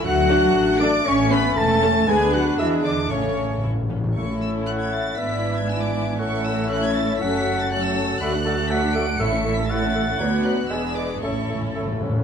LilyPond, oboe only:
\new Staff \with { instrumentName = "Oboe" } { \time 2/4 \key a \major \tempo 4 = 118 fis''4. d'''8 | cis'''8 b''8 a''4 | gis''8 fis''8 e''8 d''8 | cis''4 r4 |
r4 fis''4 | e''4 gis''4 | fis''4 e''4 | fis''4 a''4 |
b''8 a''8 fis''4 | e''4 fis''4~ | fis''4 gis''8 r8 | a''4. r8 | }